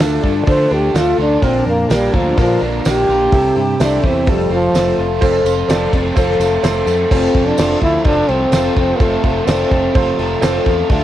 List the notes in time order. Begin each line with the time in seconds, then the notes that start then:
Already playing: D3 A3 D4 F4 A4
0.00 D2 F3 A3 D4 F4 A4, snare, tambourine
0.23 G2 D3 D4 F4 A4, kick
0.46 D3 F3 A3 D4 F4 A4 C5, kick, open hi-hat
0.71 D2 D4 F4 G4 A4
0.94 D2 F3 A3 D4 F4 A4, snare, open hi-hat, tambourine
1.18 D2 D4 F4 A4
1.42 A#1 A#2 D3 F3 A#3 C4 D4 F4 A#4, kick, open hi-hat
1.66 F2 F3 A#3 D4 A#4
1.89 A#1 F3 G3 A#3 D4 F4 A#4, snare, open hi-hat, tambourine
2.13 D2 D3 F3 A#3 D4 A#4, kick
2.37 A#2 D3 F3 A#3 D4 F4 A#4, kick, open hi-hat
2.61 A#1 F3 A#3 D4 A#4
2.85 A#1 F3 A#3 D4 F4 G4 A#4, snare, open hi-hat, tambourine
3.09 A#1 F3 A#3 D4 F4 A#4
3.32 C2 C3 A3 C4 E4 G4 A4, kick, open hi-hat
3.56 G2 C4 E4 G4
3.80 C2 A3 C4 D4 E4 G4 C5, snare, open hi-hat, tambourine
4.03 E2 E3 C4 E4 G4, kick
4.26 F1 F2 F3 G3 A3 C4 F4 A4, kick, open hi-hat
4.50 F1 F3 C4 F4 A4
4.74 F1 F3 A3 C4 F4 A4, snare, open hi-hat, tambourine
4.98 F1 C4 F4 A4
5.21 F1 F2 F3 A3 C4 F4 A4 C5, kick, crash, tambourine
5.44 F1 C4 F4 A4, ride, tambourine
5.68 F1 F3 A3 C4 F4 A4 D5, snare, ride, tambourine
5.93 F1 C4 F4 A4, kick, ride, tambourine
6.16 F1 F3 C4 F4 A4 C5, kick, ride, tambourine
6.31 snare
6.40 F1 A3 C4 F4 A4, ride, tambourine
6.63 F1 F3 C4 F4 A4 C5, snare, ride, tambourine
6.86 F2 A3 C4 F4 A4, ride, tambourine
7.11 F1 F2 C3 F3 A3 C4 F4 A4 C5, kick, crash
7.34 F1 F3 A3 C4 F4 A4, kick, crash
7.48 D4
7.57 F1 F3 A3 C4 F4 A4 C5, snare, tambourine, crash
7.81 D2 C4 E4 F4 A4, kick, crash
8.05 F1 F2 C3 F3 A3 C4 D4 F4 A4 C5, kick, crash
8.29 C2 F3 A3 C4 F4 A4, crash
8.52 F1 F3 A3 C4 F4 A4 C5, snare, tambourine, crash
8.76 F1 F3 A3 C4 F4 A4, kick, crash
9.00 F1 F2 C3 F3 A3 C4 F4 A4 C5, kick, crash
9.24 F1 F3 A3 C4 F4 A4, kick, crash
9.47 F1 F3 A3 C4 F4 A4 D5, snare, tambourine, crash
9.71 F1 C4 F4 A4, kick, crash
9.94 F1 F2 C3 F3 A3 C4 F4 A4 C5, kick, crash
9.98 A4
10.19 F1 F3 A3 C4 F4 A4, crash
10.41 F1 F3 A3 C4 F4 A4 C5, snare, tambourine, crash
10.66 E2 F3 A3 C4 F4 A4, kick, crash
10.70 C4
10.89 D2 D3 F3 A3 D4 F4 A4 D5, kick, crash